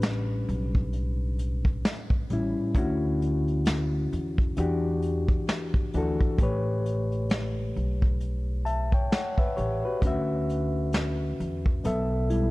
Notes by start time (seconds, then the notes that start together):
Already playing: A1 A2 G3 C#4 D4 G4 B4
0.02 snare, closed hi-hat
0.48 B1, closed hi-hat
0.75 kick
0.93 closed hi-hat
1.39 closed hi-hat
1.65 kick
1.85 snare, closed hi-hat
2.10 kick
2.30 A1 A2 G3 C#4 E4, closed hi-hat
2.75 D2 D3 C#4 E4 F#4, kick, closed hi-hat
3.22 closed hi-hat
3.48 closed hi-hat
3.65 snare, closed hi-hat
4.13 E2, closed hi-hat
4.38 kick
4.57 E2 E3 D4 F#4 G4, closed hi-hat
5.02 closed hi-hat
5.28 kick, closed hi-hat
5.49 snare, closed hi-hat
5.74 kick
5.93 D2 E3 D4 F#4, closed hi-hat
5.98 A4
6.21 kick, closed hi-hat
6.38 A1 A3 G4, kick, closed hi-hat
6.42 B4 C#5
6.86 closed hi-hat
7.12 closed hi-hat
7.30 snare, closed hi-hat
7.76 B1, closed hi-hat
8.02 kick
8.20 closed hi-hat
8.65 E5 A5, closed hi-hat
8.92 C#5 G5, kick, closed hi-hat
9.12 C#5 F#5, snare, closed hi-hat
9.38 B4 E5, kick
9.57 A1 G4 C#5, closed hi-hat
9.85 F#4 B4
10.02 D2 D3 C#4 F#4, kick, closed hi-hat
10.07 E5
10.49 closed hi-hat
10.93 snare, closed hi-hat
11.40 E2, closed hi-hat
11.66 kick
11.84 B1 B2 B3 A4 E5, closed hi-hat
12.30 G3 E4, closed hi-hat